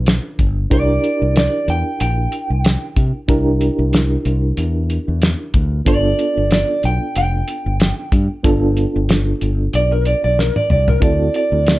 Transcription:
0.00 0.18 B1 medium
0.00 0.67 D4 medium
0.00 0.67 F4 medium
0.00 0.67 A4 medium
0.00 0.68 B4 medium
0.06 snare loud
0.06 closed hi-hat medium
0.39 0.65 G1 medium
0.39 kick medium
0.39 closed hi-hat medium
0.70 0.97 C2 medium
0.70 3.24 D4 medium
0.70 3.25 E4 medium
0.70 3.25 G4 medium
0.70 3.25 A#4 medium
0.70 1.35 D5 medium
0.70 kick loud
0.70 closed hi-hat medium
1.04 closed hi-hat medium
1.22 1.47 C2 medium
1.36 1.68 D5 medium
1.36 snare loud
1.36 closed hi-hat medium
1.68 1.82 E2 medium
1.68 2.00 G5 medium
1.68 closed hi-hat medium
2.00 2.26 A#1 medium
2.00 3.90 G5 medium
2.00 closed hi-hat medium
2.32 closed hi-hat medium
2.50 2.76 C2 medium
2.65 snare loud
2.65 closed hi-hat medium
2.96 3.11 C3 medium
2.96 kick medium
2.96 closed hi-hat medium
3.28 3.68 C2 loud
3.28 5.82 D4 medium
3.28 5.83 E4 medium
3.28 5.83 G4 medium
3.28 5.83 A#4 medium
3.28 kick loud
3.28 closed hi-hat medium
3.61 closed hi-hat medium
3.79 4.16 C2 medium
3.93 snare loud
3.93 closed hi-hat medium
4.25 4.51 C2 medium
4.25 closed hi-hat medium
4.57 4.97 E2 medium
4.57 closed hi-hat medium
4.90 closed hi-hat medium
5.08 5.34 E2 medium
5.22 snare loud
5.22 closed hi-hat medium
5.54 5.80 D2 medium
5.54 kick medium
5.54 closed hi-hat medium
5.85 6.12 G1 loud
5.85 8.40 B3 medium
5.85 8.40 D4 medium
5.85 8.40 F4 medium
5.85 8.40 A4 medium
5.85 6.50 D5 medium
5.85 kick loud
5.85 closed hi-hat medium
6.19 closed hi-hat medium
6.37 6.63 G1 medium
6.51 6.83 D5 medium
6.51 snare loud
6.51 closed hi-hat medium
6.83 6.98 B1 medium
6.83 7.16 G5 medium
6.83 closed hi-hat medium
7.16 7.42 F1 medium
7.16 9.06 G5 medium
7.16 closed hi-hat medium
7.48 closed hi-hat medium
7.66 7.91 G1 medium
7.80 snare loud
7.80 closed hi-hat medium
8.12 8.27 G2 medium
8.12 kick medium
8.12 closed hi-hat medium
8.43 8.84 G1 loud
8.43 10.97 B3 medium
8.43 10.98 D4 medium
8.43 10.98 F4 medium
8.43 10.98 A4 medium
8.43 kick loud
8.43 closed hi-hat medium
8.77 closed hi-hat medium
8.96 9.32 G1 loud
9.09 snare loud
9.09 closed hi-hat medium
9.41 9.67 G1 medium
9.41 closed hi-hat medium
9.73 10.13 B1 medium
9.73 9.92 D5 medium
9.73 closed hi-hat medium
9.92 10.06 A#4 medium
10.05 10.23 D5 medium
10.05 closed hi-hat medium
10.24 10.49 B1 medium
10.24 10.38 D5 medium
10.39 10.56 A#4 medium
10.39 snare medium
10.56 10.70 D5 medium
10.56 high tom medium
10.70 10.96 C2 medium
10.70 10.88 D5 medium
10.70 mid tom medium
10.88 11.02 A#4 medium
10.88 floor tom medium
11.00 11.28 D2 loud
11.00 11.79 C4 medium
11.00 11.79 E4 medium
11.00 11.79 F#4 medium
11.00 11.79 A4 medium
11.00 11.34 D5 medium
11.00 kick loud
11.00 closed hi-hat medium
11.34 11.79 D5 medium
11.34 closed hi-hat medium
11.52 11.77 D2 medium
11.66 snare loud
11.66 closed hi-hat medium

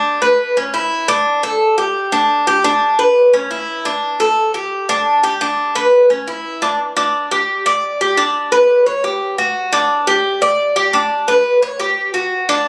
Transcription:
0.00 0.21 D4 medium
0.22 0.56 B4 medium
0.57 0.74 C#4 medium
0.74 1.08 E4 medium
1.08 1.42 D4 medium
1.43 1.77 A4 medium
1.78 2.11 G4 medium
2.12 2.46 D4 medium
2.47 2.64 G4 medium
2.64 2.98 D4 medium
2.99 3.32 B4 medium
3.34 3.50 C#4 medium
3.51 3.84 E4 medium
3.85 4.19 D4 medium
4.20 4.54 A4 medium
4.54 4.88 G4 medium
4.89 5.23 D4 medium
5.24 5.40 G4 medium
5.41 5.75 D4 medium
5.75 6.09 B4 medium
6.10 6.27 C#4 medium
6.28 6.61 E4 medium
6.62 6.79 D4 medium
6.97 7.30 D4 loud
7.31 7.65 G4 medium
7.66 7.99 D5 medium
8.01 8.17 G4 medium
8.17 8.51 D4 medium
8.52 8.86 B4 medium
8.86 9.03 C#5 medium
9.04 9.37 G4 medium
9.38 9.72 F#4 medium
9.73 10.06 D4 loud
10.07 10.41 G4 medium
10.42 10.75 D5 medium
10.76 10.93 G4 medium
10.93 11.27 D4 medium
11.28 11.62 B4 medium
11.62 11.79 C#5 medium
11.80 12.13 G4 medium
12.14 12.48 F#4 medium
12.49 12.68 D4 loud

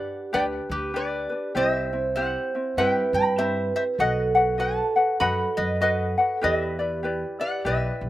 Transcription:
0.00 0.32 D4 medium
0.00 0.33 G4 medium
0.00 1.62 G4 medium
0.00 0.33 B4 medium
0.00 0.30 D5 medium
0.00 0.33 F#5 medium
0.33 0.57 D2 medium
0.33 0.93 D4 medium
0.33 0.93 G4 medium
0.33 0.95 B4 medium
0.33 0.44 D5 medium
0.33 0.43 G5 medium
0.70 1.25 D2 medium
0.70 0.94 G4 medium
0.70 0.95 B4 medium
0.94 1.30 D4 medium
0.94 1.29 G4 medium
0.94 1.28 B4 medium
0.94 1.52 B4 medium
0.94 1.56 D5 medium
1.30 1.55 D4 soft
1.30 1.54 B4 soft
1.55 2.35 C2 medium
1.55 1.92 C4 medium
1.55 1.92 E4 medium
1.55 1.91 G4 medium
1.55 2.81 C5 loud
1.55 2.13 C5 medium
1.55 2.19 E5 loud
1.93 2.16 C4 soft
1.93 2.17 E4 soft
2.16 2.53 C4 soft
2.16 2.53 E4 medium
2.16 2.53 G4 medium
2.16 2.74 C5 medium
2.16 2.78 F#5 medium
2.55 2.77 C4 soft
2.55 2.78 E4 soft
2.77 3.01 G2 medium
2.77 3.37 C4 medium
2.77 3.38 E4 medium
2.77 3.37 G4 medium
2.77 3.95 B4 loud
2.77 3.42 B4 medium
2.77 3.11 E5 medium
2.77 3.14 G5 loud
3.13 3.69 G2 medium
3.13 3.37 G5 medium
3.13 3.39 B5 medium
3.38 3.99 C4 medium
3.38 4.00 E4 medium
3.38 3.99 G4 medium
3.38 3.72 C5 medium
3.38 3.75 E5 medium
3.76 3.83 C5 medium
3.76 3.82 E5 medium
3.98 4.78 B1 medium
3.98 4.36 F#4 medium
3.98 6.36 A4 loud
3.98 4.35 B4 medium
3.98 4.36 D#5 medium
3.98 4.57 D#5 medium
3.98 4.34 F#5 medium
3.98 4.59 F#5 medium
4.35 4.58 F#4 soft
4.35 4.58 B4 soft
4.35 4.59 F#5 medium
4.58 4.96 F#4 medium
4.58 4.95 B4 medium
4.58 4.95 D#5 medium
4.58 4.95 F#5 medium
4.58 5.17 F#5 medium
4.58 5.20 A5 medium
4.96 5.19 F#4 soft
4.96 5.20 B4 soft
4.96 5.20 F#5 soft
5.20 5.44 F#2 medium
5.20 5.80 F#4 medium
5.20 5.82 B4 medium
5.20 5.80 D#5 medium
5.20 5.81 F#5 medium
5.20 5.55 F#5 medium
5.20 5.58 B5 loud
5.57 6.13 F#2 medium
5.57 5.81 B4 medium
5.57 5.80 D#5 medium
5.81 6.18 F#4 medium
5.81 6.18 B4 medium
5.81 6.40 B4 medium
5.81 6.18 D#5 medium
5.81 6.43 D#5 medium
5.81 6.16 F#5 medium
6.18 6.42 F#4 soft
6.18 6.41 B4 soft
6.18 6.42 F#5 soft
6.38 6.79 G4 medium
6.38 6.43 A4 medium
6.42 7.23 E2 medium
6.42 6.79 E4 medium
6.42 8.09 G4 medium
6.42 6.78 B4 medium
6.42 7.37 B4 medium
6.42 6.78 D5 medium
6.42 6.55 D#5 medium
6.55 7.41 E5 medium
6.79 7.03 E4 soft
6.79 7.02 B4 soft
6.79 7.04 D5 medium
7.03 7.40 E4 medium
7.03 7.40 G4 medium
7.03 7.39 B4 medium
7.03 7.38 D5 medium
7.40 7.64 E4 soft
7.40 7.64 B4 soft
7.40 7.65 D5 soft
7.40 7.64 D5 medium
7.40 7.66 F#5 medium
7.65 7.88 B1 medium
7.65 8.09 E4 medium
7.65 8.09 G4 medium
7.65 8.09 B4 medium
7.65 8.09 D5 medium
7.65 8.09 E5 medium
8.01 8.09 B1 medium

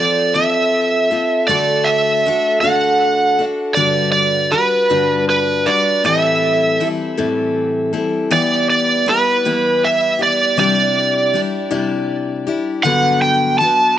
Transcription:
0.00 0.34 F3 medium
0.00 0.35 C4 medium
0.00 0.34 F4 medium
0.00 0.33 A4 medium
0.00 0.37 D5 medium
0.34 1.12 F3 medium
0.34 1.11 C4 medium
0.34 1.10 F4 medium
0.34 1.09 A4 medium
0.34 1.45 E5 medium
1.11 1.49 C4 soft
1.11 1.49 F4 medium
1.11 1.49 A4 medium
1.48 2.26 D3 medium
1.48 2.24 A3 medium
1.48 2.25 D4 medium
1.48 2.26 F#4 medium
1.48 2.26 A4 medium
1.48 1.88 D5 medium
1.84 2.60 E5 medium
2.25 2.63 A3 medium
2.25 2.63 D4 medium
2.25 2.62 F#4 medium
2.25 2.61 A4 medium
2.61 3.40 D3 medium
2.61 3.40 A3 medium
2.61 3.40 D4 medium
2.61 3.39 F#4 medium
2.61 3.37 A4 medium
2.61 3.44 F#5 medium
3.39 3.76 D4 soft
3.39 3.76 F#4 soft
3.39 3.77 A4 medium
3.75 4.53 G2 medium
3.75 4.53 D3 medium
3.75 4.52 G3 medium
3.75 4.52 D4 medium
3.75 4.52 F#4 medium
3.75 4.53 B4 medium
3.75 4.11 D5 medium
4.12 4.53 D5 medium
4.52 4.89 G3 medium
4.52 4.90 D4 medium
4.52 4.89 F#4 medium
4.52 5.24 B4 medium
4.52 4.88 B4 medium
4.90 5.67 G2 medium
4.90 5.67 D3 medium
4.90 5.67 G3 medium
4.90 5.66 D4 medium
4.90 5.65 F#4 medium
4.90 5.65 B4 medium
5.30 5.69 B4 medium
5.66 6.04 G3 soft
5.66 6.05 D4 soft
5.66 6.04 F#4 medium
5.66 6.04 B4 medium
5.66 6.02 D5 medium
6.04 6.80 A2 medium
6.04 7.18 E3 medium
6.04 6.80 G3 medium
6.04 6.79 C4 medium
6.04 6.81 E4 medium
6.04 6.81 A4 medium
6.04 6.87 E5 medium
6.80 7.18 G3 medium
6.80 7.17 C4 medium
6.80 7.17 E4 medium
6.80 7.16 A4 medium
7.17 7.94 A2 medium
7.17 8.30 E3 medium
7.17 7.93 G3 medium
7.17 7.93 C4 medium
7.17 7.93 E4 medium
7.17 7.92 A4 medium
7.93 8.29 G3 medium
7.93 8.30 C4 medium
7.93 8.30 E4 medium
7.93 8.31 A4 medium
8.30 9.46 E3 medium
8.30 9.06 G3 medium
8.30 9.06 B3 medium
8.30 9.08 E4 medium
8.30 9.08 G4 medium
8.30 8.69 D5 medium
8.70 9.09 D5 medium
9.06 9.45 G3 medium
9.06 9.45 B3 medium
9.06 9.45 E4 medium
9.06 9.44 G4 medium
9.06 9.86 B4 medium
9.45 10.21 E3 medium
9.45 10.57 G3 medium
9.45 10.20 B3 medium
9.45 10.20 E4 medium
9.45 10.19 G4 medium
9.85 10.19 E5 loud
10.19 10.57 B3 soft
10.19 10.57 E4 soft
10.19 10.57 G4 medium
10.19 10.58 D5 medium
10.57 11.33 C3 medium
10.57 11.33 G3 medium
10.57 11.35 D4 medium
10.57 11.34 E4 medium
10.57 11.36 G4 medium
10.57 11.40 D5 medium
11.34 11.70 G3 medium
11.34 11.70 D4 medium
11.34 11.70 E4 medium
11.34 11.69 G4 medium
11.71 12.47 C3 medium
11.71 12.85 G3 medium
11.71 12.47 D4 medium
11.71 12.46 E4 medium
11.71 12.46 G4 medium
12.47 12.84 D4 soft
12.47 12.85 E4 medium
12.47 12.85 G4 medium
12.83 13.60 G2 medium
12.83 13.60 D3 medium
12.83 13.59 F#3 medium
12.83 13.60 B3 medium
12.83 13.61 D4 medium
12.83 13.60 B4 medium
12.83 13.19 F#5 loud
13.22 13.58 G5 medium
13.59 13.98 F#3 medium
13.59 13.97 B3 medium
13.59 13.97 D4 medium
13.59 13.98 A5 loud
13.63 13.97 B4 medium

